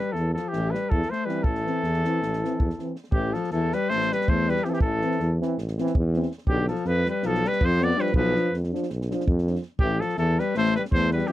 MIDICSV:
0, 0, Header, 1, 7, 480
1, 0, Start_track
1, 0, Key_signature, 0, "minor"
1, 0, Tempo, 374065
1, 1852, Time_signature, 9, 3, 24, 8
1, 7357, Tempo, 367422
1, 14657, End_track
2, 0, Start_track
2, 0, Title_t, "Trumpet"
2, 0, Program_c, 0, 56
2, 0, Note_on_c, 0, 71, 82
2, 154, Note_on_c, 0, 69, 90
2, 173, Note_off_c, 0, 71, 0
2, 424, Note_off_c, 0, 69, 0
2, 432, Note_on_c, 0, 69, 74
2, 619, Note_on_c, 0, 67, 88
2, 638, Note_off_c, 0, 69, 0
2, 904, Note_on_c, 0, 71, 85
2, 923, Note_off_c, 0, 67, 0
2, 1150, Note_on_c, 0, 69, 94
2, 1169, Note_off_c, 0, 71, 0
2, 1413, Note_on_c, 0, 72, 89
2, 1433, Note_off_c, 0, 69, 0
2, 1602, Note_on_c, 0, 71, 80
2, 1621, Note_off_c, 0, 72, 0
2, 1837, Note_on_c, 0, 69, 91
2, 1857, Note_off_c, 0, 71, 0
2, 3797, Note_off_c, 0, 69, 0
2, 4012, Note_on_c, 0, 67, 93
2, 4276, Note_on_c, 0, 69, 80
2, 4296, Note_off_c, 0, 67, 0
2, 4503, Note_off_c, 0, 69, 0
2, 4516, Note_on_c, 0, 69, 94
2, 4794, Note_on_c, 0, 71, 108
2, 4813, Note_off_c, 0, 69, 0
2, 4993, Note_on_c, 0, 72, 121
2, 5012, Note_off_c, 0, 71, 0
2, 5295, Note_on_c, 0, 71, 105
2, 5314, Note_off_c, 0, 72, 0
2, 5501, Note_on_c, 0, 72, 110
2, 5520, Note_off_c, 0, 71, 0
2, 5770, Note_on_c, 0, 71, 112
2, 5789, Note_off_c, 0, 72, 0
2, 5955, Note_on_c, 0, 67, 71
2, 5974, Note_off_c, 0, 71, 0
2, 6022, Note_on_c, 0, 69, 74
2, 6041, Note_off_c, 0, 67, 0
2, 6079, Note_on_c, 0, 67, 101
2, 6098, Note_off_c, 0, 69, 0
2, 6167, Note_off_c, 0, 67, 0
2, 6175, Note_on_c, 0, 69, 96
2, 6884, Note_off_c, 0, 69, 0
2, 8338, Note_on_c, 0, 67, 106
2, 8589, Note_off_c, 0, 67, 0
2, 8599, Note_on_c, 0, 69, 83
2, 8839, Note_on_c, 0, 71, 112
2, 8859, Note_off_c, 0, 69, 0
2, 9108, Note_off_c, 0, 71, 0
2, 9143, Note_on_c, 0, 71, 94
2, 9359, Note_on_c, 0, 69, 117
2, 9379, Note_off_c, 0, 71, 0
2, 9630, Note_on_c, 0, 71, 107
2, 9650, Note_off_c, 0, 69, 0
2, 9862, Note_on_c, 0, 72, 109
2, 9882, Note_off_c, 0, 71, 0
2, 10106, Note_on_c, 0, 74, 115
2, 10126, Note_off_c, 0, 72, 0
2, 10329, Note_on_c, 0, 71, 98
2, 10349, Note_off_c, 0, 74, 0
2, 10517, Note_off_c, 0, 71, 0
2, 10531, Note_on_c, 0, 71, 112
2, 11039, Note_off_c, 0, 71, 0
2, 12669, Note_on_c, 0, 67, 109
2, 12935, Note_on_c, 0, 69, 95
2, 12954, Note_off_c, 0, 67, 0
2, 13149, Note_off_c, 0, 69, 0
2, 13170, Note_on_c, 0, 69, 105
2, 13444, Note_on_c, 0, 71, 87
2, 13463, Note_off_c, 0, 69, 0
2, 13649, Note_off_c, 0, 71, 0
2, 13677, Note_on_c, 0, 72, 118
2, 13912, Note_off_c, 0, 72, 0
2, 13921, Note_on_c, 0, 71, 99
2, 14017, Note_off_c, 0, 71, 0
2, 14144, Note_on_c, 0, 72, 116
2, 14367, Note_off_c, 0, 72, 0
2, 14391, Note_on_c, 0, 71, 93
2, 14593, Note_on_c, 0, 67, 87
2, 14613, Note_off_c, 0, 71, 0
2, 14657, Note_off_c, 0, 67, 0
2, 14657, End_track
3, 0, Start_track
3, 0, Title_t, "French horn"
3, 0, Program_c, 1, 60
3, 1642, Note_on_c, 1, 60, 53
3, 1838, Note_off_c, 1, 60, 0
3, 2130, Note_on_c, 1, 60, 61
3, 2328, Note_off_c, 1, 60, 0
3, 2634, Note_on_c, 1, 60, 56
3, 2831, Note_off_c, 1, 60, 0
3, 3135, Note_on_c, 1, 60, 59
3, 3320, Note_off_c, 1, 60, 0
3, 3609, Note_on_c, 1, 60, 45
3, 3775, Note_off_c, 1, 60, 0
3, 5965, Note_on_c, 1, 60, 61
3, 6157, Note_off_c, 1, 60, 0
3, 6447, Note_on_c, 1, 60, 74
3, 6642, Note_off_c, 1, 60, 0
3, 6940, Note_on_c, 1, 60, 64
3, 7135, Note_off_c, 1, 60, 0
3, 7438, Note_on_c, 1, 60, 67
3, 7624, Note_off_c, 1, 60, 0
3, 7906, Note_on_c, 1, 60, 69
3, 8075, Note_off_c, 1, 60, 0
3, 10261, Note_on_c, 1, 62, 69
3, 10461, Note_off_c, 1, 62, 0
3, 10755, Note_on_c, 1, 62, 64
3, 10956, Note_off_c, 1, 62, 0
3, 11251, Note_on_c, 1, 62, 59
3, 11452, Note_off_c, 1, 62, 0
3, 11757, Note_on_c, 1, 62, 63
3, 11945, Note_off_c, 1, 62, 0
3, 12233, Note_on_c, 1, 62, 51
3, 12401, Note_off_c, 1, 62, 0
3, 14580, Note_on_c, 1, 60, 73
3, 14657, Note_off_c, 1, 60, 0
3, 14657, End_track
4, 0, Start_track
4, 0, Title_t, "Alto saxophone"
4, 0, Program_c, 2, 65
4, 0, Note_on_c, 2, 55, 75
4, 163, Note_on_c, 2, 52, 66
4, 183, Note_off_c, 2, 55, 0
4, 417, Note_off_c, 2, 52, 0
4, 424, Note_on_c, 2, 53, 69
4, 653, Note_on_c, 2, 52, 81
4, 672, Note_off_c, 2, 53, 0
4, 947, Note_on_c, 2, 55, 66
4, 966, Note_off_c, 2, 52, 0
4, 1168, Note_on_c, 2, 52, 74
4, 1187, Note_off_c, 2, 55, 0
4, 1420, Note_on_c, 2, 57, 71
4, 1439, Note_off_c, 2, 52, 0
4, 1614, Note_on_c, 2, 55, 63
4, 1633, Note_off_c, 2, 57, 0
4, 1857, Note_on_c, 2, 52, 69
4, 1876, Note_off_c, 2, 55, 0
4, 3807, Note_off_c, 2, 52, 0
4, 3992, Note_on_c, 2, 52, 77
4, 4286, Note_on_c, 2, 53, 77
4, 4305, Note_off_c, 2, 52, 0
4, 4508, Note_off_c, 2, 53, 0
4, 4520, Note_on_c, 2, 52, 91
4, 4800, Note_on_c, 2, 55, 91
4, 4819, Note_off_c, 2, 52, 0
4, 5003, Note_on_c, 2, 57, 97
4, 5023, Note_off_c, 2, 55, 0
4, 5289, Note_on_c, 2, 55, 80
4, 5308, Note_off_c, 2, 57, 0
4, 5503, Note_on_c, 2, 57, 87
4, 5523, Note_off_c, 2, 55, 0
4, 5749, Note_on_c, 2, 55, 86
4, 5769, Note_off_c, 2, 57, 0
4, 5955, Note_on_c, 2, 52, 61
4, 5974, Note_off_c, 2, 55, 0
4, 6001, Note_on_c, 2, 53, 60
4, 6020, Note_off_c, 2, 52, 0
4, 6066, Note_on_c, 2, 52, 72
4, 6085, Note_off_c, 2, 53, 0
4, 6169, Note_off_c, 2, 52, 0
4, 6180, Note_on_c, 2, 52, 76
4, 6887, Note_off_c, 2, 52, 0
4, 8319, Note_on_c, 2, 50, 82
4, 8579, Note_off_c, 2, 50, 0
4, 8597, Note_on_c, 2, 53, 77
4, 8830, Note_off_c, 2, 53, 0
4, 8830, Note_on_c, 2, 53, 72
4, 9082, Note_off_c, 2, 53, 0
4, 9090, Note_on_c, 2, 55, 78
4, 9330, Note_on_c, 2, 53, 86
4, 9349, Note_off_c, 2, 55, 0
4, 9600, Note_on_c, 2, 55, 81
4, 9620, Note_off_c, 2, 53, 0
4, 9811, Note_on_c, 2, 53, 85
4, 9830, Note_off_c, 2, 55, 0
4, 10067, Note_on_c, 2, 59, 97
4, 10087, Note_off_c, 2, 53, 0
4, 10285, Note_on_c, 2, 55, 88
4, 10304, Note_off_c, 2, 59, 0
4, 10483, Note_off_c, 2, 55, 0
4, 10491, Note_on_c, 2, 53, 93
4, 11017, Note_off_c, 2, 53, 0
4, 12655, Note_on_c, 2, 52, 86
4, 12931, Note_on_c, 2, 53, 75
4, 12950, Note_off_c, 2, 52, 0
4, 13141, Note_off_c, 2, 53, 0
4, 13149, Note_on_c, 2, 52, 91
4, 13440, Note_on_c, 2, 55, 85
4, 13459, Note_off_c, 2, 52, 0
4, 13647, Note_off_c, 2, 55, 0
4, 13663, Note_on_c, 2, 57, 113
4, 13905, Note_off_c, 2, 57, 0
4, 13949, Note_on_c, 2, 55, 77
4, 14038, Note_off_c, 2, 55, 0
4, 14146, Note_on_c, 2, 57, 94
4, 14368, Note_off_c, 2, 57, 0
4, 14411, Note_on_c, 2, 55, 87
4, 14646, Note_off_c, 2, 55, 0
4, 14657, End_track
5, 0, Start_track
5, 0, Title_t, "Trombone"
5, 0, Program_c, 3, 57
5, 1623, Note_on_c, 3, 52, 57
5, 1822, Note_off_c, 3, 52, 0
5, 2112, Note_on_c, 3, 52, 48
5, 2315, Note_off_c, 3, 52, 0
5, 2611, Note_on_c, 3, 52, 54
5, 2812, Note_off_c, 3, 52, 0
5, 3112, Note_on_c, 3, 52, 55
5, 3302, Note_off_c, 3, 52, 0
5, 3581, Note_on_c, 3, 52, 54
5, 3753, Note_off_c, 3, 52, 0
5, 5976, Note_on_c, 3, 52, 64
5, 6165, Note_off_c, 3, 52, 0
5, 6449, Note_on_c, 3, 52, 57
5, 6644, Note_off_c, 3, 52, 0
5, 6928, Note_on_c, 3, 52, 67
5, 7125, Note_off_c, 3, 52, 0
5, 7429, Note_on_c, 3, 52, 74
5, 7618, Note_off_c, 3, 52, 0
5, 7903, Note_on_c, 3, 52, 58
5, 8072, Note_off_c, 3, 52, 0
5, 10277, Note_on_c, 3, 53, 69
5, 10473, Note_off_c, 3, 53, 0
5, 10769, Note_on_c, 3, 53, 64
5, 10967, Note_off_c, 3, 53, 0
5, 11262, Note_on_c, 3, 53, 60
5, 11460, Note_off_c, 3, 53, 0
5, 11762, Note_on_c, 3, 53, 64
5, 11949, Note_off_c, 3, 53, 0
5, 12239, Note_on_c, 3, 53, 44
5, 12406, Note_off_c, 3, 53, 0
5, 14598, Note_on_c, 3, 52, 64
5, 14657, Note_off_c, 3, 52, 0
5, 14657, End_track
6, 0, Start_track
6, 0, Title_t, "Tuba"
6, 0, Program_c, 4, 58
6, 181, Note_on_c, 4, 40, 84
6, 454, Note_off_c, 4, 40, 0
6, 689, Note_on_c, 4, 33, 89
6, 959, Note_off_c, 4, 33, 0
6, 1183, Note_on_c, 4, 40, 97
6, 1319, Note_off_c, 4, 40, 0
6, 1854, Note_on_c, 4, 33, 92
6, 2127, Note_off_c, 4, 33, 0
6, 2343, Note_on_c, 4, 40, 89
6, 2618, Note_off_c, 4, 40, 0
6, 2842, Note_on_c, 4, 33, 81
6, 3116, Note_off_c, 4, 33, 0
6, 3347, Note_on_c, 4, 40, 91
6, 3483, Note_off_c, 4, 40, 0
6, 4007, Note_on_c, 4, 33, 107
6, 4281, Note_off_c, 4, 33, 0
6, 4509, Note_on_c, 4, 40, 94
6, 4781, Note_off_c, 4, 40, 0
6, 5010, Note_on_c, 4, 33, 94
6, 5279, Note_off_c, 4, 33, 0
6, 5506, Note_on_c, 4, 40, 112
6, 5872, Note_off_c, 4, 40, 0
6, 6172, Note_on_c, 4, 33, 102
6, 6441, Note_off_c, 4, 33, 0
6, 6661, Note_on_c, 4, 40, 97
6, 6931, Note_off_c, 4, 40, 0
6, 7150, Note_on_c, 4, 33, 87
6, 7421, Note_off_c, 4, 33, 0
6, 7658, Note_on_c, 4, 40, 115
6, 8028, Note_off_c, 4, 40, 0
6, 8343, Note_on_c, 4, 35, 114
6, 8612, Note_off_c, 4, 35, 0
6, 8824, Note_on_c, 4, 41, 109
6, 9097, Note_off_c, 4, 41, 0
6, 9325, Note_on_c, 4, 35, 101
6, 9597, Note_off_c, 4, 35, 0
6, 9830, Note_on_c, 4, 41, 115
6, 10198, Note_off_c, 4, 41, 0
6, 10495, Note_on_c, 4, 35, 126
6, 10767, Note_off_c, 4, 35, 0
6, 10989, Note_on_c, 4, 41, 95
6, 11261, Note_off_c, 4, 41, 0
6, 11502, Note_on_c, 4, 35, 92
6, 11769, Note_off_c, 4, 35, 0
6, 11972, Note_on_c, 4, 41, 110
6, 12343, Note_off_c, 4, 41, 0
6, 12655, Note_on_c, 4, 33, 111
6, 12925, Note_off_c, 4, 33, 0
6, 13164, Note_on_c, 4, 40, 100
6, 13429, Note_off_c, 4, 40, 0
6, 13656, Note_on_c, 4, 33, 100
6, 13921, Note_off_c, 4, 33, 0
6, 14136, Note_on_c, 4, 40, 116
6, 14501, Note_off_c, 4, 40, 0
6, 14657, End_track
7, 0, Start_track
7, 0, Title_t, "Drums"
7, 197, Note_on_c, 9, 38, 23
7, 326, Note_off_c, 9, 38, 0
7, 471, Note_on_c, 9, 38, 32
7, 600, Note_off_c, 9, 38, 0
7, 683, Note_on_c, 9, 38, 30
7, 811, Note_off_c, 9, 38, 0
7, 958, Note_on_c, 9, 38, 32
7, 1086, Note_off_c, 9, 38, 0
7, 1175, Note_on_c, 9, 36, 87
7, 1303, Note_off_c, 9, 36, 0
7, 1312, Note_on_c, 9, 38, 21
7, 1441, Note_off_c, 9, 38, 0
7, 1444, Note_on_c, 9, 38, 30
7, 1573, Note_off_c, 9, 38, 0
7, 1652, Note_on_c, 9, 38, 28
7, 1781, Note_off_c, 9, 38, 0
7, 1849, Note_on_c, 9, 36, 89
7, 1978, Note_off_c, 9, 36, 0
7, 1989, Note_on_c, 9, 38, 23
7, 2117, Note_off_c, 9, 38, 0
7, 2138, Note_on_c, 9, 38, 22
7, 2266, Note_off_c, 9, 38, 0
7, 2355, Note_on_c, 9, 38, 24
7, 2482, Note_off_c, 9, 38, 0
7, 2482, Note_on_c, 9, 38, 23
7, 2610, Note_off_c, 9, 38, 0
7, 2624, Note_on_c, 9, 38, 28
7, 2752, Note_off_c, 9, 38, 0
7, 2857, Note_on_c, 9, 38, 29
7, 2985, Note_off_c, 9, 38, 0
7, 2993, Note_on_c, 9, 38, 25
7, 3122, Note_off_c, 9, 38, 0
7, 3141, Note_on_c, 9, 38, 35
7, 3269, Note_off_c, 9, 38, 0
7, 3335, Note_on_c, 9, 36, 83
7, 3463, Note_off_c, 9, 36, 0
7, 3464, Note_on_c, 9, 38, 25
7, 3582, Note_off_c, 9, 38, 0
7, 3582, Note_on_c, 9, 38, 29
7, 3710, Note_off_c, 9, 38, 0
7, 3794, Note_on_c, 9, 38, 23
7, 3898, Note_off_c, 9, 38, 0
7, 3898, Note_on_c, 9, 38, 20
7, 4005, Note_on_c, 9, 36, 97
7, 4027, Note_off_c, 9, 38, 0
7, 4134, Note_off_c, 9, 36, 0
7, 4287, Note_on_c, 9, 38, 28
7, 4413, Note_off_c, 9, 38, 0
7, 4413, Note_on_c, 9, 38, 30
7, 4499, Note_off_c, 9, 38, 0
7, 4499, Note_on_c, 9, 38, 28
7, 4627, Note_off_c, 9, 38, 0
7, 4778, Note_on_c, 9, 38, 33
7, 4906, Note_off_c, 9, 38, 0
7, 5009, Note_on_c, 9, 38, 31
7, 5138, Note_off_c, 9, 38, 0
7, 5150, Note_on_c, 9, 38, 30
7, 5279, Note_off_c, 9, 38, 0
7, 5287, Note_on_c, 9, 38, 37
7, 5404, Note_off_c, 9, 38, 0
7, 5404, Note_on_c, 9, 38, 25
7, 5494, Note_on_c, 9, 36, 92
7, 5532, Note_off_c, 9, 38, 0
7, 5623, Note_off_c, 9, 36, 0
7, 5761, Note_on_c, 9, 38, 33
7, 5855, Note_off_c, 9, 38, 0
7, 5855, Note_on_c, 9, 38, 31
7, 5963, Note_off_c, 9, 38, 0
7, 5963, Note_on_c, 9, 38, 29
7, 6076, Note_off_c, 9, 38, 0
7, 6076, Note_on_c, 9, 38, 29
7, 6166, Note_on_c, 9, 36, 101
7, 6205, Note_off_c, 9, 38, 0
7, 6294, Note_off_c, 9, 36, 0
7, 6434, Note_on_c, 9, 38, 34
7, 6562, Note_off_c, 9, 38, 0
7, 6562, Note_on_c, 9, 38, 25
7, 6668, Note_off_c, 9, 38, 0
7, 6668, Note_on_c, 9, 38, 28
7, 6797, Note_off_c, 9, 38, 0
7, 6961, Note_on_c, 9, 38, 29
7, 7089, Note_off_c, 9, 38, 0
7, 7164, Note_on_c, 9, 38, 34
7, 7285, Note_off_c, 9, 38, 0
7, 7285, Note_on_c, 9, 38, 25
7, 7414, Note_off_c, 9, 38, 0
7, 7422, Note_on_c, 9, 38, 31
7, 7529, Note_off_c, 9, 38, 0
7, 7529, Note_on_c, 9, 38, 29
7, 7640, Note_on_c, 9, 36, 99
7, 7660, Note_off_c, 9, 38, 0
7, 7771, Note_off_c, 9, 36, 0
7, 7884, Note_on_c, 9, 38, 31
7, 8002, Note_off_c, 9, 38, 0
7, 8002, Note_on_c, 9, 38, 26
7, 8118, Note_off_c, 9, 38, 0
7, 8118, Note_on_c, 9, 38, 32
7, 8203, Note_off_c, 9, 38, 0
7, 8203, Note_on_c, 9, 38, 23
7, 8318, Note_on_c, 9, 36, 91
7, 8333, Note_off_c, 9, 38, 0
7, 8449, Note_off_c, 9, 36, 0
7, 8592, Note_on_c, 9, 38, 27
7, 8688, Note_off_c, 9, 38, 0
7, 8688, Note_on_c, 9, 38, 28
7, 8810, Note_off_c, 9, 38, 0
7, 8810, Note_on_c, 9, 38, 26
7, 8941, Note_off_c, 9, 38, 0
7, 9088, Note_on_c, 9, 38, 26
7, 9218, Note_off_c, 9, 38, 0
7, 9307, Note_on_c, 9, 38, 33
7, 9437, Note_off_c, 9, 38, 0
7, 9467, Note_on_c, 9, 38, 32
7, 9597, Note_off_c, 9, 38, 0
7, 9597, Note_on_c, 9, 38, 36
7, 9699, Note_off_c, 9, 38, 0
7, 9699, Note_on_c, 9, 38, 27
7, 9808, Note_on_c, 9, 36, 93
7, 9830, Note_off_c, 9, 38, 0
7, 9939, Note_off_c, 9, 36, 0
7, 10071, Note_on_c, 9, 38, 33
7, 10192, Note_off_c, 9, 38, 0
7, 10192, Note_on_c, 9, 38, 31
7, 10296, Note_off_c, 9, 38, 0
7, 10296, Note_on_c, 9, 38, 34
7, 10404, Note_off_c, 9, 38, 0
7, 10404, Note_on_c, 9, 38, 27
7, 10500, Note_on_c, 9, 36, 99
7, 10535, Note_off_c, 9, 38, 0
7, 10630, Note_off_c, 9, 36, 0
7, 10788, Note_on_c, 9, 38, 30
7, 10918, Note_off_c, 9, 38, 0
7, 11021, Note_on_c, 9, 38, 32
7, 11150, Note_off_c, 9, 38, 0
7, 11150, Note_on_c, 9, 38, 34
7, 11281, Note_off_c, 9, 38, 0
7, 11298, Note_on_c, 9, 38, 29
7, 11402, Note_off_c, 9, 38, 0
7, 11402, Note_on_c, 9, 38, 33
7, 11492, Note_off_c, 9, 38, 0
7, 11492, Note_on_c, 9, 38, 36
7, 11623, Note_off_c, 9, 38, 0
7, 11645, Note_on_c, 9, 38, 28
7, 11771, Note_off_c, 9, 38, 0
7, 11771, Note_on_c, 9, 38, 33
7, 11890, Note_off_c, 9, 38, 0
7, 11890, Note_on_c, 9, 38, 30
7, 11986, Note_on_c, 9, 36, 102
7, 12021, Note_off_c, 9, 38, 0
7, 12116, Note_off_c, 9, 36, 0
7, 12125, Note_on_c, 9, 38, 30
7, 12240, Note_off_c, 9, 38, 0
7, 12240, Note_on_c, 9, 38, 33
7, 12349, Note_off_c, 9, 38, 0
7, 12349, Note_on_c, 9, 38, 32
7, 12441, Note_off_c, 9, 38, 0
7, 12441, Note_on_c, 9, 38, 31
7, 12571, Note_off_c, 9, 38, 0
7, 12656, Note_on_c, 9, 36, 109
7, 12786, Note_off_c, 9, 36, 0
7, 12948, Note_on_c, 9, 38, 35
7, 13048, Note_off_c, 9, 38, 0
7, 13048, Note_on_c, 9, 38, 29
7, 13152, Note_off_c, 9, 38, 0
7, 13152, Note_on_c, 9, 38, 27
7, 13283, Note_off_c, 9, 38, 0
7, 13445, Note_on_c, 9, 38, 34
7, 13575, Note_off_c, 9, 38, 0
7, 13643, Note_on_c, 9, 38, 31
7, 13774, Note_off_c, 9, 38, 0
7, 13778, Note_on_c, 9, 38, 36
7, 13909, Note_off_c, 9, 38, 0
7, 13922, Note_on_c, 9, 38, 37
7, 14046, Note_off_c, 9, 38, 0
7, 14046, Note_on_c, 9, 38, 30
7, 14133, Note_on_c, 9, 36, 101
7, 14177, Note_off_c, 9, 38, 0
7, 14264, Note_off_c, 9, 36, 0
7, 14383, Note_on_c, 9, 38, 31
7, 14479, Note_off_c, 9, 38, 0
7, 14479, Note_on_c, 9, 38, 32
7, 14583, Note_off_c, 9, 38, 0
7, 14583, Note_on_c, 9, 38, 32
7, 14657, Note_off_c, 9, 38, 0
7, 14657, End_track
0, 0, End_of_file